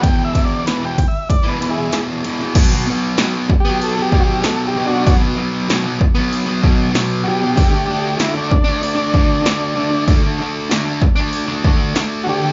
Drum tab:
CC |----------------|x---------------|----------------|----------------|
RD |x-x-x-x-x-x-x-x-|----------------|----------------|----------------|
HH |----------------|o---o---o---o---|o---o---o---o---|o---o---o---o---|
SD |----o-------o--o|----o-------o---|----o-------o---|----o-----o-o---|
BD |o-o---o-o-------|o-----o---o-----|o-----o---o-----|o-----o---o-----|

CC |----------------|
RD |----------------|
HH |o---o---o---o---|
SD |----o-------o---|
BD |o-----o---o-----|